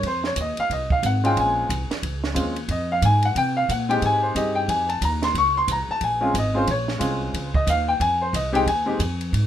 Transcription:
0.03 upright bass F2, upright piano C5, kick, ride
0.24 upright piano C#5, snare
0.36 upright bass D#2, kick, hi-hat pedal, ride
0.41 upright piano D#5
0.57 upright piano F5, muted upright bass stroke, ride
0.70 upright bass C2, upright piano D#5, kick, ride
0.90 upright piano F5, kick
1.03 upright bass G#1, upright piano F#5, kick, hi-hat pedal, ride
1.24 upright piano G#3 C4 C#4 F4 G5, ride
1.36 upright bass A#1, upright piano G#5, kick, ride
1.69 upright bass C2, kick, hi-hat pedal, ride
1.90 muted upright bass stroke, snare, ride
2.03 upright bass C#2, kick, ride
2.24 snare
2.33 upright bass D#2, upright piano G#3 C4 C#4 F4, kick, hi-hat pedal, ride
2.56 ride
2.68 upright bass F2, upright piano D#5, kick, ride
2.92 upright piano F5
3.02 upright bass G#2, upright piano G#5, kick, hi-hat pedal, ride
3.23 upright piano F#5, ride
3.35 upright bass C3, upright piano G5, kick, ride
3.57 upright piano F5
3.69 upright bass A#2, upright piano F#5, kick, hi-hat pedal, ride
3.89 upright piano G#3 C4 D#4 G4 G5, ride
4.02 upright bass G#2, upright piano G#5, kick, ride
4.23 upright piano C5
4.35 upright bass G2, upright piano C4 D#4 G4 G#4 D#5, kick, hi-hat pedal, ride
4.55 upright piano G5
4.68 upright bass F2, upright piano G#5, kick, ride
4.89 upright piano A5, ride
5.01 upright bass D#2, upright piano A#5, kick, hi-hat pedal, ride
5.22 upright piano C6, snare, ride
5.35 upright bass C#2, upright piano C#6, kick, ride
5.57 upright piano C6
5.68 upright bass C2, upright piano A#5, kick, hi-hat pedal, ride
5.89 upright piano A5, muted upright bass stroke
6.01 upright bass A#1, upright piano G#5, kick, ride
6.21 upright piano G#3 C4 C#4 F4
6.34 upright bass G#1, kick, hi-hat pedal, ride
6.38 upright piano D#5
6.54 upright piano G#3 C4 C#4 F4 C5
6.67 upright bass A#1, upright piano C#5, kick, ride
6.88 snare
6.98 upright bass C2, upright piano G#3 C4 C#4 F4, kick, hi-hat pedal, ride
7.34 upright bass C#2, kick, ride
7.54 upright piano D#5, kick
7.67 upright bass D#2, upright piano F5, kick, hi-hat pedal, ride
7.88 upright piano G5
8.00 upright bass F2, upright piano G#5, kick, ride
8.22 upright piano C5
8.33 upright bass C2, upright piano D#5, kick, hi-hat pedal, ride
8.52 upright piano G#3 C4 D#4 G4 G5, ride
8.66 upright bass D#2, upright piano G#5, kick, ride
8.86 upright piano G#3 C4 D#4 G4
8.99 upright bass F2, kick, hi-hat pedal, ride
9.21 ride
9.33 upright bass G#2, kick, ride

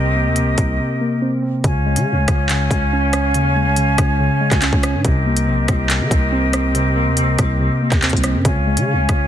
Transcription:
Already playing: 808-style bass C2, synth keys C3 A#3 C4, flute section C4 G4 A#4 D#5
0.16 synth keys A#3
0.26 808-style bass D#2
0.36 synth keys C3, closed hi-hat
0.42 808-style bass C2
0.58 808-style bass C2, synth keys C3, kick, closed hi-hat
0.79 synth keys C3
1.01 synth keys A#3
1.22 synth keys C4
1.42 synth keys C4
1.64 808-style bass C#2, synth keys C#3, flute section C#4 C#5 F5 G#5, kick, closed hi-hat
1.86 synth keys G#3
1.96 808-style bass C#3, closed hi-hat
2.07 synth keys C#3
2.12 808-style bass C#2
2.28 808-style bass C#2, synth keys C#3, kick, cross-stick, closed hi-hat
2.49 synth keys C#3, clap, closed hi-hat
2.71 808-style bass C#2, synth keys G#3, kick, closed hi-hat
2.93 synth keys C#4
3.13 synth keys C#4, cross-stick, closed hi-hat
3.34 808-style bass D#2, synth keys C#3, closed hi-hat
3.56 synth keys G#3
3.66 808-style bass C#2
3.76 synth keys C#3, closed hi-hat
3.98 808-style bass C#2, synth keys C#3, kick, cross-stick, closed hi-hat
4.20 synth keys C#3
4.41 synth keys G#3
4.51 808-style bass C#2, kick, clap, closed hi-hat
4.62 synth keys C#4, clap, closed hi-hat
4.73 808-style bass C#2, kick
4.83 synth keys C#4, cross-stick, closed hi-hat
4.94 808-style bass G#2
5.04 808-style bass C2, synth keys C3, flute section C4 G4 A#4 D#5, kick, closed hi-hat
5.26 synth keys A#3
5.37 closed hi-hat
5.47 808-style bass A#1, synth keys C3
5.58 808-style bass C2
5.68 808-style bass C2, synth keys C3, kick, cross-stick, closed hi-hat
5.90 synth keys C3, clap, closed hi-hat
6.00 808-style bass D#3
6.11 808-style bass C2, synth keys A#3, kick, closed hi-hat
6.32 synth keys C4
6.53 synth keys C4, cross-stick, closed hi-hat
6.75 synth keys C3, closed hi-hat
6.97 synth keys A#3
7.07 808-style bass D#2
7.17 synth keys C3, closed hi-hat
7.23 808-style bass C2
7.39 808-style bass C2, synth keys C3, kick, cross-stick, closed hi-hat
7.60 synth keys C3
7.82 synth keys A#3
7.92 808-style bass D#2, kick, clap, closed hi-hat
8.02 synth keys C4, clap, closed hi-hat
8.10 808-style bass C2, kick, closed hi-hat
8.17 closed hi-hat
8.23 synth keys C4, cross-stick, closed hi-hat
8.34 808-style bass G2
8.45 808-style bass C#2, synth keys C#3, flute section C#4 C#5 F5 G#5, kick, closed hi-hat
8.67 synth keys G#3
8.77 808-style bass C#3, closed hi-hat
8.87 synth keys C#3
8.93 808-style bass C#2
9.09 808-style bass C#2, kick, cross-stick, closed hi-hat

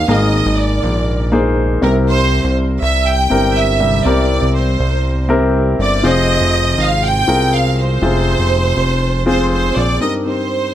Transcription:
Already playing: grand piano G#2 D#3 A#3 D#4 G#4 A#4
0.08 analog synth bass G#1, grand piano G#2 D#3 A#3 D#4 G#4 A#4, violin section D#5
0.46 analog synth bass G#1
0.60 violin section D5
0.83 analog synth bass A#1
1.32 grand piano A#3 D#4 G#4 C5
1.82 analog synth bass C2, grand piano C3 G3 C4 E4 G4 A#4, violin section A#4
2.08 violin section C5
2.44 analog synth bass C2
2.82 analog synth bass C2, violin section E5
3.07 violin section G5
3.30 analog synth bass G1, grand piano C4 E4 G4 A#4
3.56 violin section E5
3.80 grand piano C3 G3
4.05 analog synth bass C2, grand piano C4 E4 G4 A#4, violin section D5
4.42 analog synth bass C2
4.56 violin section C5
4.80 analog synth bass C2
5.29 grand piano C4 E4 G4 A#4
5.79 analog synth bass G1, violin section D5
6.03 analog synth bass F1, grand piano C3 C4 F4 G#4 C5, violin section D#5
6.41 analog synth bass F1
6.78 analog synth bass G#1, violin section F5
7.05 violin section G5
7.27 analog synth bass C2, grand piano C4 F4 G#4 A#4
7.55 violin section F5
7.79 violin section C5
8.02 analog synth bass F1, grand piano C3 C4 F4 G#4 C5
8.39 analog synth bass F1
8.77 analog synth bass F1
9.26 grand piano C4 F4 G#4 C5, violin section C5
9.52 violin section C5
9.76 analog synth bass A#1, violin section D5
10.00 grand piano G2 C4 D#4 G4 A#4, violin section D#5
10.25 grand piano C4 D#4 G4 C5, violin section C5

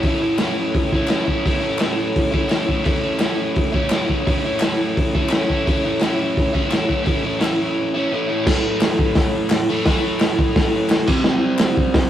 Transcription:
0.03 overdriven electric guitar A2 E3 A3 C#4, kick, open hi-hat
0.07 overdriven electric guitar E4
0.21 overdriven electric guitar A3 C#4 E4
0.38 overdriven electric guitar E3 A3 C#4, snare, clap, open hi-hat
0.43 overdriven electric guitar E4
0.75 kick, open hi-hat
0.92 overdriven electric guitar A3 C#4 E4, kick
1.08 overdriven electric guitar A2 E3 A3 C#4 E4, snare, clap, open hi-hat
1.26 overdriven electric guitar A3 C#4 E4, kick
1.45 overdriven electric guitar A2 E3 A3 C#4 E4, kick, open hi-hat
1.60 overdriven electric guitar A3 C#4 E4
1.79 overdriven electric guitar E3 A3 C#4 E4, snare, clap, open hi-hat
2.16 kick, open hi-hat
2.31 overdriven electric guitar A3 C#4 E4, kick
2.47 overdriven electric guitar A2 E3 A3 C#4 E4, clap
2.51 snare, open hi-hat
2.67 overdriven electric guitar A3 C#4 E4, kick
2.84 overdriven electric guitar A2 E3 A3 C#4 E4, kick, open hi-hat
3.01 overdriven electric guitar A3 C#4 E4
3.19 overdriven electric guitar E3 A3 C#4 E4, snare, clap, open hi-hat
3.56 kick, open hi-hat
3.72 overdriven electric guitar A3 C#4 E4, kick
3.90 overdriven electric guitar A2 E3 A3 C#4 E4, snare, clap, open hi-hat
4.07 overdriven electric guitar A3 C#4 E4, kick
4.25 overdriven electric guitar A2 E3 A3 C#4 E4, kick, open hi-hat
4.45 overdriven electric guitar A3 C#4 E4
4.60 overdriven electric guitar E3 A3 C#4 E4, snare, clap, open hi-hat
4.97 kick, open hi-hat
5.15 overdriven electric guitar A3 C#4 E4, kick
5.29 overdriven electric guitar A2 E3 A3 C#4 E4, snare, clap, open hi-hat
5.50 overdriven electric guitar A3 C#4 E4, kick
5.66 overdriven electric guitar A2 E3 A3 C#4 E4, kick, open hi-hat
5.84 overdriven electric guitar A3 C#4 E4
6.00 overdriven electric guitar E3 A3 C#4 E4, snare, clap, open hi-hat
6.37 kick, open hi-hat
6.53 overdriven electric guitar A3 C#4 E4, kick
6.69 overdriven electric guitar A2 E3 A3 C#4 E4, clap
6.73 snare, open hi-hat
6.88 overdriven electric guitar A3 C#4 E4, kick
7.03 overdriven electric guitar A2 E3 A3 C#4 E4, open hi-hat
7.07 kick
7.22 overdriven electric guitar A3 C#4 E4
7.39 overdriven electric guitar E3 A3 C#4 E4, snare, clap, open hi-hat
7.94 overdriven electric guitar A3 C#4 E4
8.12 overdriven electric guitar A2 E3 A3 C#4 E4
8.28 overdriven electric guitar A3 C#4 E4
8.44 overdriven electric guitar A2 E3 A3, kick, snare, crash
8.81 snare, clap, open hi-hat
8.99 kick
9.15 kick, snare, open hi-hat
9.50 snare, clap, open hi-hat
9.69 overdriven electric guitar A2 E3 A3
9.84 overdriven electric guitar A2 E3 A3, kick, snare, open hi-hat
10.20 snare, clap, open hi-hat
10.39 kick
10.56 kick, snare, open hi-hat
10.89 snare, clap, open hi-hat
11.07 overdriven electric guitar C3 G3 C4, kick, crash
11.24 snare
11.59 snare, clap, open hi-hat
11.77 kick
11.94 kick, snare, open hi-hat

